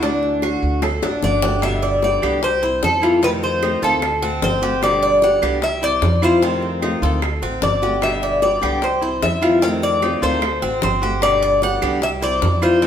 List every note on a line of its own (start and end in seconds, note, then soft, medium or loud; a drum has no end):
0.00 0.57 D2 medium
0.00 0.81 D3 medium
0.00 0.81 A3 medium
0.00 0.42 D4 medium
0.00 0.82 D4 medium
0.00 high bongo medium
0.04 0.82 F#4 medium
0.23 high bongo soft
0.42 0.82 F#4 medium
0.42 high bongo medium
0.42 claves medium
0.63 1.00 D2 medium
0.82 1.02 A4 medium
0.82 muted nylon-string guitar stroke medium
0.82 high bongo loud
0.82 claves medium
1.02 1.21 A1 medium
1.02 1.22 A3 medium
1.02 1.42 D4 medium
1.02 1.22 D4 medium
1.02 1.22 F#4 medium
1.02 high bongo loud
1.22 2.17 G1 medium
1.22 1.42 D3 medium
1.22 1.42 A3 medium
1.22 1.42 D4 medium
1.22 1.41 F#4 medium
1.22 1.61 D5 medium
1.22 low bongo medium
1.42 1.63 A3 medium
1.42 1.62 D4 medium
1.42 1.62 F#4 medium
1.42 1.62 G4 medium
1.42 low bongo medium
1.62 2.02 B2 medium
1.62 2.01 D3 medium
1.62 2.02 G3 medium
1.62 2.03 B3 medium
1.62 2.03 G4 medium
1.62 2.04 E5 loud
1.62 high bongo medium
1.62 claves medium
1.82 2.21 D5 medium
1.82 high bongo soft
2.02 2.22 D3 medium
2.02 2.22 G3 soft
2.02 2.22 B3 medium
2.02 2.21 G4 medium
2.02 2.41 D5 medium
2.02 high bongo medium
2.22 2.79 C2 medium
2.22 2.42 D3 medium
2.22 2.42 G3 medium
2.22 2.42 B3 medium
2.22 2.42 G4 medium
2.22 2.62 G4 medium
2.22 claves medium
2.42 2.81 C5 medium
2.42 muted nylon-string guitar stroke medium
2.42 high bongo medium
2.62 3.02 G3 soft
2.62 3.01 C4 soft
2.62 3.01 E4 medium
2.62 3.02 C5 medium
2.62 high bongo soft
2.83 3.77 F2 medium
2.83 3.21 A4 medium
2.83 high bongo medium
2.83 low bongo medium
3.02 3.22 E3 medium
3.02 3.22 G3 medium
3.02 3.22 C4 medium
3.02 3.21 E4 medium
3.02 3.22 F4 medium
3.02 high bongo soft
3.02 claves medium
3.22 3.62 C3 medium
3.22 3.61 D#3 medium
3.22 3.61 A3 medium
3.22 3.62 C4 medium
3.22 3.62 F4 medium
3.22 3.29 B4 loud
3.22 high bongo medium
3.43 3.80 C5 medium
3.43 high bongo soft
3.62 3.82 D#3 soft
3.62 3.82 A3 medium
3.62 3.82 C4 medium
3.62 3.82 D#4 medium
3.62 3.81 F4 medium
3.62 high bongo medium
3.62 claves medium
3.82 4.39 D2 medium
3.82 4.02 D#3 medium
3.82 4.01 A3 medium
3.82 4.02 C4 medium
3.82 4.02 F4 medium
3.82 4.22 A4 medium
3.82 4.39 A4 medium
4.02 muted nylon-string guitar stroke medium
4.02 high bongo medium
4.02 claves medium
4.22 4.62 A3 soft
4.22 4.61 C4 medium
4.22 4.62 C4 soft
4.22 4.61 F#4 soft
4.22 high bongo soft
4.42 5.36 G1 medium
4.42 4.83 C5 loud
4.42 high bongo medium
4.42 low bongo medium
4.62 4.82 A3 medium
4.62 4.82 C4 medium
4.62 4.81 F#4 medium
4.62 5.01 G4 medium
4.82 5.21 B2 medium
4.82 5.21 D3 medium
4.82 5.22 G3 medium
4.82 5.22 B3 medium
4.82 5.23 G4 medium
4.82 5.23 D5 loud
4.82 high bongo medium
4.82 claves medium
5.02 5.41 D5 medium
5.02 high bongo soft
5.22 5.42 D3 medium
5.22 5.42 G3 medium
5.22 5.41 B3 medium
5.22 5.41 G4 medium
5.22 5.60 F#5 loud
5.22 high bongo medium
5.42 5.98 C2 medium
5.42 5.62 D3 medium
5.42 5.62 G3 medium
5.42 5.62 B3 medium
5.42 5.61 G4 medium
5.42 5.81 G4 medium
5.42 claves medium
5.62 5.84 E5 loud
5.62 muted nylon-string guitar stroke medium
5.62 high bongo medium
5.82 6.22 G3 soft
5.82 6.21 C4 soft
5.82 6.21 E4 soft
5.82 6.21 C5 medium
5.82 6.20 D5 loud
5.82 high bongo soft
6.02 6.96 F2 medium
6.02 high bongo medium
6.02 low bongo medium
6.22 6.42 E3 medium
6.22 6.42 G3 medium
6.22 6.42 C4 medium
6.22 6.41 E4 medium
6.22 6.42 F4 medium
6.22 6.79 C5 medium
6.22 high bongo soft
6.22 claves medium
6.42 6.81 C3 medium
6.42 6.81 D#3 medium
6.42 6.82 A3 medium
6.42 6.82 C4 medium
6.42 6.83 F4 medium
6.42 high bongo medium
6.63 high bongo soft
6.82 7.02 D#3 soft
6.82 7.02 A3 medium
6.82 7.02 C4 medium
6.82 7.02 D#4 medium
6.82 7.01 F4 medium
6.82 high bongo medium
6.82 claves medium
7.02 7.39 D2 medium
7.02 7.22 D#3 medium
7.02 7.22 A3 medium
7.02 7.22 C4 medium
7.02 7.22 F4 medium
7.02 7.42 A4 medium
7.22 muted nylon-string guitar stroke medium
7.22 high bongo medium
7.22 claves medium
7.42 7.61 A1 medium
7.42 7.82 A3 soft
7.42 7.81 C4 medium
7.42 7.82 C4 soft
7.42 7.81 F#4 soft
7.42 high bongo soft
7.62 8.56 G1 medium
7.62 8.03 D5 medium
7.62 high bongo medium
7.62 low bongo medium
7.82 8.02 A3 medium
7.82 8.02 C4 medium
7.82 8.01 F#4 medium
7.82 8.21 G4 medium
8.01 8.41 B2 medium
8.01 8.41 D3 medium
8.01 8.41 G3 medium
8.01 8.42 B3 medium
8.01 8.42 G4 medium
8.01 8.40 E5 medium
8.01 high bongo medium
8.01 claves medium
8.22 8.62 D5 medium
8.22 high bongo soft
8.42 8.61 D3 medium
8.42 8.61 G3 medium
8.42 8.61 B3 medium
8.42 8.60 G4 medium
8.42 8.80 D5 medium
8.42 high bongo medium
8.61 9.19 C2 medium
8.61 8.82 D3 medium
8.61 8.81 G3 medium
8.61 8.82 B3 medium
8.61 8.81 G4 medium
8.61 9.01 G4 medium
8.61 claves medium
8.82 9.24 C5 medium
8.82 muted nylon-string guitar stroke medium
8.82 high bongo medium
9.01 9.42 G3 soft
9.01 9.41 C4 soft
9.01 9.40 E4 soft
9.01 9.41 C5 medium
9.01 high bongo soft
9.23 10.17 F2 medium
9.23 9.63 E5 medium
9.23 high bongo medium
9.23 low bongo medium
9.41 9.62 E3 medium
9.41 9.62 G3 medium
9.41 9.62 C4 medium
9.41 9.61 E4 medium
9.41 9.62 F4 medium
9.41 high bongo soft
9.41 claves medium
9.61 10.01 C3 medium
9.61 10.01 D#3 medium
9.61 10.01 A3 medium
9.61 10.01 C4 medium
9.61 10.02 C4 medium
9.61 10.02 F4 medium
9.61 9.68 F5 loud
9.61 high bongo medium
9.82 10.20 D5 medium
9.82 high bongo soft
10.02 10.21 D#3 soft
10.02 10.22 A3 medium
10.02 10.21 C4 medium
10.02 10.22 D#4 medium
10.02 10.21 F4 medium
10.02 high bongo medium
10.02 claves medium
10.22 10.60 D2 medium
10.22 10.42 D#3 medium
10.22 10.42 A3 medium
10.22 10.42 C4 medium
10.22 10.41 F4 medium
10.22 10.61 A4 medium
10.22 10.79 C5 medium
10.42 muted nylon-string guitar stroke medium
10.42 high bongo medium
10.42 claves medium
10.62 10.81 A1 medium
10.62 11.02 A3 soft
10.62 11.01 C4 medium
10.62 11.02 C4 soft
10.62 11.01 F#4 soft
10.62 high bongo soft
10.82 11.76 G1 medium
10.82 11.20 C5 medium
10.82 high bongo medium
10.82 low bongo medium
11.02 11.22 A3 medium
11.02 11.22 C4 medium
11.02 11.21 F#4 medium
11.02 11.41 G4 medium
11.22 11.61 B2 medium
11.22 11.61 D3 medium
11.22 11.61 G3 medium
11.22 11.62 B3 medium
11.22 11.62 G4 medium
11.22 11.63 D5 loud
11.22 high bongo medium
11.22 claves medium
11.42 11.81 D5 medium
11.42 high bongo soft
11.62 11.81 D3 medium
11.62 11.82 G3 medium
11.62 11.81 B3 medium
11.62 11.80 G4 medium
11.62 12.03 F#5 loud
11.62 high bongo medium
11.82 12.38 C2 medium
11.82 12.02 D3 medium
11.82 12.01 G3 medium
11.82 12.02 B3 medium
11.82 12.01 G4 medium
11.82 12.21 G4 medium
11.82 claves medium
12.02 12.09 E5 loud
12.02 muted nylon-string guitar stroke medium
12.02 high bongo medium
12.21 12.62 G3 soft
12.21 12.61 C4 soft
12.21 12.60 E4 medium
12.21 12.61 C5 medium
12.21 12.60 D5 medium
12.21 high bongo soft
12.42 12.87 F2 medium
12.42 high bongo medium
12.42 low bongo medium
12.62 12.82 E3 medium
12.62 12.82 G3 medium
12.62 12.82 C4 medium
12.62 12.81 E4 medium
12.62 12.82 F4 medium
12.62 12.87 C5 medium
12.62 high bongo soft
12.62 claves medium
12.82 12.87 C3 medium
12.82 12.87 D#3 medium
12.82 12.87 A3 medium
12.82 12.87 C4 medium
12.82 12.87 F4 medium
12.82 high bongo medium